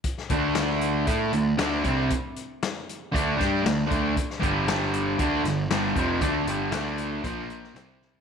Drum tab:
HH |x-x-x-x-x-x-x-x-|x-x-x-x-x-x-x-x-|x-x-x-x-x-x-x-x-|x-x-x-x-x-x-x---|
SD |-o--o-------o---|----o-----o-o---|-o--o-----o-o---|----o------oo-o-|
FT |----------------|----------------|----------------|---------------o|
BD |o-o-----o-----o-|o-------o-o---o-|o-o-----o-----o-|o-------o-------|